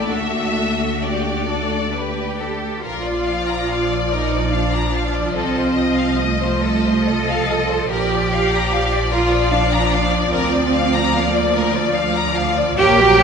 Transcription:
0.00 0.11 A1 medium
0.00 2.59 A3 soft
0.00 0.89 A4 soft
0.00 0.12 D5 soft
0.11 2.63 D2 soft
0.11 2.58 D4 soft
0.11 0.89 F#4 soft
0.11 1.93 F#4 soft
0.11 1.03 E5 medium
1.03 1.45 G4 soft
1.03 2.39 D5 soft
1.49 1.93 A4 soft
1.93 2.79 G4 medium
1.93 2.39 B4 soft
2.38 2.83 A4 soft
2.83 5.32 A#1 soft
2.83 7.86 F3 soft
2.83 4.12 F4 medium
2.83 3.04 A#4 soft
2.83 5.31 D5 soft
3.04 3.27 D5 soft
3.27 3.49 F5 soft
3.49 3.70 A#5 soft
3.70 3.91 F5 soft
3.92 4.12 D5 soft
4.12 4.52 D#4 medium
4.12 4.33 A#4 soft
4.33 4.53 D5 soft
4.52 5.35 D4 medium
4.52 4.73 F5 soft
4.73 4.94 A#5 soft
4.94 5.15 F5 soft
5.14 5.35 D5 soft
5.35 7.91 C2 medium
5.35 6.17 C4 medium
5.35 5.54 A4 soft
5.35 7.86 D#5 soft
5.56 5.77 C5 soft
5.77 5.98 D#5 soft
5.96 6.18 F5 soft
6.17 7.08 A3 medium
6.17 6.40 D#5 soft
6.41 6.64 C5 soft
6.62 6.85 A4 soft
6.86 7.08 C5 soft
7.07 7.90 A4 medium
7.07 7.29 D#5 soft
7.28 7.49 F5 soft
7.49 7.70 D#5 soft
7.70 7.90 C5 soft
7.90 10.27 A#1 medium
7.90 12.75 F3 medium
7.90 9.08 G4 medium
7.90 8.10 A#4 soft
7.90 12.75 D5 medium
8.12 8.31 D5 medium
8.33 8.52 F5 soft
8.53 8.72 A#5 soft
8.72 8.91 F5 medium
8.93 9.12 D5 soft
9.11 9.50 F4 medium
9.11 9.31 A#4 medium
9.31 9.51 D5 medium
9.51 10.31 D4 medium
9.51 9.71 F5 medium
9.71 9.91 A#5 medium
9.92 10.12 F5 medium
10.12 10.32 D5 medium
10.31 12.75 D2 medium
10.31 11.12 C4 medium
10.31 10.51 A#4 medium
10.53 10.73 D5 medium
10.72 10.93 F5 medium
10.93 11.14 A#5 medium
11.13 11.96 A#3 medium
11.13 11.35 F5 medium
11.35 11.55 D5 medium
11.56 11.76 A#4 medium
11.75 11.96 D5 medium
11.96 12.17 F5 medium
12.15 12.37 A#5 medium
12.35 12.57 F5 medium
12.56 12.78 D5 medium
12.77 13.23 A#1 medium
12.77 12.97 A#3 medium
12.77 13.23 G4 loud
12.77 12.98 A#4 medium
12.77 12.97 C#5 medium
12.98 13.20 F#3 medium
12.98 13.19 A#4 medium
12.98 13.21 C#5 medium
13.18 13.23 A#3 medium
13.18 13.23 C#5 medium

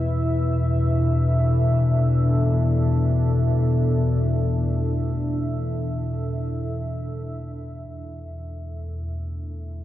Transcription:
0.00 7.88 E2 medium
0.00 7.88 B2 medium
0.00 7.89 E3 medium
0.00 0.52 E4 medium
0.00 2.46 B4 medium
0.00 9.84 E5 medium
0.26 9.84 D4 medium
0.49 9.84 A4 medium
7.89 9.84 E2 medium
7.89 9.84 B2 medium
7.89 9.84 E4 medium
9.73 9.84 B4 medium

